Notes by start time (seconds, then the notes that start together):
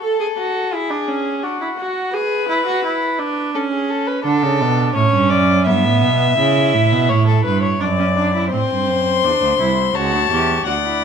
0.02 A4
0.20 G#4
0.38 F#4
0.73 E4 G#4
0.90 D4
1.08 C#4
1.43 D4 F#4
1.61 E4
1.78 F#4
2.14 G#4 B4
2.49 E4
2.66 F#4
2.85 E4
3.19 D4
3.54 C#4 A4
3.72 G#4
3.90 A4
4.07 B4
4.24 D3 D4 A4
4.43 C#3
4.61 B2
4.95 A2 C#4 C#5
5.13 G2
5.30 F#2 D5
5.66 G2 B3 E5
5.84 A2
6.02 B2
6.38 C#3 E4
6.74 A2
6.92 B2
7.09 A2 C#5
7.27 A4
7.45 G2 B4
7.63 C#5
7.80 F#2 D4 D5
7.98 C#4
8.17 D4
8.34 E4
8.52 A2 C4 C5 C6
8.70 G2
8.89 F#2
9.24 E2 D4
9.42 D2
9.60 C2 E4
9.95 C#2 F#4 C#5 A5
10.13 D2
10.31 E2 G4
10.66 D2 F#4 D5 F#5
10.85 E4